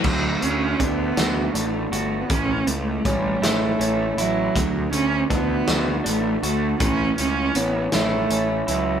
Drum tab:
CC |x-----|------|------|------|
HH |-xxxxx|xxxxxx|xxxxxx|xxxxxx|
SD |---o--|---o--|---o--|---o--|
BD |o-o---|o-o---|o-o---|o-----|